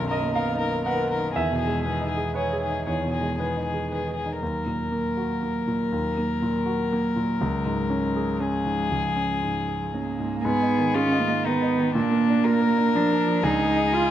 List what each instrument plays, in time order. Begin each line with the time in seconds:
Already playing: grand piano B1, cello D#3
0.04 grand piano F#2
0.10 cello D#3, violin A#4, grand piano D#5
0.21 grand piano A#3
0.34 cello D#3, grand piano B3 F5, violin A#4
0.54 grand piano D#4
0.59 cello D#3, violin A#4
0.71 grand piano A#4
0.85 cello D#3, violin A#4, grand piano B4 F#5
1.03 grand piano A#4
1.10 cello D#3, violin A#4
1.19 grand piano D#4
1.35 grand piano E2 E5, cello D#3, violin G#4
1.51 grand piano B2
1.59 cello D#3, violin G#4
1.68 grand piano G#3
1.84 cello D#3, grand piano B3, violin G#4
2.01 grand piano D#4
2.09 cello D#3, violin G#4
2.17 grand piano G#4
2.34 cello D#3, violin G#4, grand piano B4 C#5
2.53 grand piano G#4
2.61 cello D#3, violin G#4
2.69 grand piano D#4
2.86 grand piano E2 C#5, cello D#3, violin G#4
3.06 grand piano B2
3.13 cello D#3, violin G#4
3.22 grand piano G#3
3.38 cello D#3, grand piano B3 B4, violin G#4
3.56 grand piano D#4
3.65 cello D#3, violin G#4
3.74 grand piano G#4
3.91 cello D#3, violin G#4, grand piano B4
4.08 grand piano G#4
4.14 cello D#3, violin G#4
4.26 grand piano D#4
4.40 grand piano D#2, cello F#3, violin A#4
4.66 grand piano A#2
4.92 grand piano A#3
5.17 grand piano F#4
5.43 grand piano A#3
5.67 grand piano A#2
5.92 grand piano D#2
6.18 grand piano A#3
6.42 grand piano A#2
6.66 grand piano F#4
6.92 grand piano A#3
7.16 grand piano A#2
7.41 grand piano C#2
7.66 grand piano G#2
7.90 grand piano C#4
8.16 grand piano G#4
8.40 cello F3, grand piano C#4, violin G#4
8.65 grand piano G#2
8.91 grand piano C#2
9.17 grand piano C#4
9.43 grand piano G#2
9.68 grand piano G#4
9.94 cello A#3, grand piano C#4
10.19 grand piano G#2
10.43 grand piano G#2, cello B3, violin G#4
10.62 grand piano D#4
10.78 grand piano D#3
10.94 cello C#4, violin F4, grand piano G#4
11.13 grand piano D#5
11.20 cello A#3
11.29 grand piano D#4
11.45 grand piano D#3, cello B3, violin D#4
11.62 grand piano D#4
11.79 grand piano D#3
11.95 grand piano A#2, cello A#3, violin D4
12.11 grand piano A#3
12.28 grand piano D4
12.45 grand piano F4, violin A#4
12.61 grand piano A#4
12.78 grand piano D4
12.94 grand piano F3, cello D4
13.11 grand piano A#3
13.27 grand piano F3
13.43 grand piano C#2, cello D#4, violin G#4
13.59 grand piano G#3
13.76 grand piano D#4
13.93 grand piano F4, cello F4